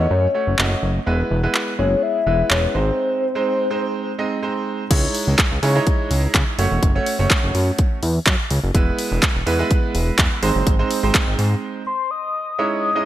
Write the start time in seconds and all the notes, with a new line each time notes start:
Already playing: A3 C#4 F#4 C#5 D#5
0.11 F#2 C#5
0.34 A3 C#4 F#4 C#5
0.47 F#1
0.58 F#1 A3 C#4 F#4 D#5, clap
0.83 F#1
1.06 E1 G#3 B3 E4 B4
1.31 E1
1.43 G#3 B3 E4 B4
1.55 clap
1.78 F#1 G#3 B3 E4 G#4 C#5
2.03 E5
2.26 E1 G#3 B3 E4 B4
2.50 E1 G#3 B3 E4 B4 C#5, clap
2.74 G#1 G#3 C4 D#4 C5
3.35 G#3 C4 D#4 C5
3.70 G#3 C4 D#4 C5
4.18 G#3 C4 D#4 D#5
4.42 G#3 C4 D#4 C5
4.91 C#2 G#3 D#4 E4 C#5, kick, closed hi-hat, crash
5.15 open hi-hat
5.27 C#2
5.39 kick, clap, closed hi-hat
5.51 C#2
5.62 C#3 G#3 D#4 E4 C#5, open hi-hat
5.75 G#3 D#4 E4 C#5
5.87 kick, closed hi-hat
6.11 C#2, open hi-hat
6.35 C#3, kick, clap, closed hi-hat
6.58 F#1 A3 C#4 F#4 C#5, open hi-hat
6.71 E1
6.83 F#1, kick, closed hi-hat
6.95 A3 C#4 F#4 C#5
7.06 open hi-hat
7.19 F#1 A3 C#4 F#4 C#5
7.30 kick, clap, closed hi-hat
7.43 F#1
7.55 F#2, open hi-hat
7.79 kick, closed hi-hat
8.03 E2, open hi-hat
8.26 F#2, kick, clap, closed hi-hat
8.50 C#2, open hi-hat
8.63 F#1
8.74 E1 G#3 B3 E4 B4, kick, closed hi-hat
8.99 open hi-hat
9.12 E1
9.23 kick, clap, closed hi-hat
9.35 E1
9.46 E2 G#3 B3 E4 B4, open hi-hat
9.59 G#3 B3 E4 B4
9.71 kick, closed hi-hat
9.95 E1, open hi-hat
10.19 E2, kick, clap, closed hi-hat
10.42 G#1 G#3 C4 D#4 C5, open hi-hat
10.55 F#1
10.67 G#1, kick, closed hi-hat
10.79 G#3 C4 D#4 C5
10.91 open hi-hat
11.03 G#1 G#3 C4 D#4 C5
11.15 kick, clap, closed hi-hat
11.27 G#1
11.39 G#2, open hi-hat
11.87 C6
12.11 D#6
12.58 G#3 C#4 D#4 E4 C#5 D#6
12.95 G#3 C#4 D#4 E4 D#5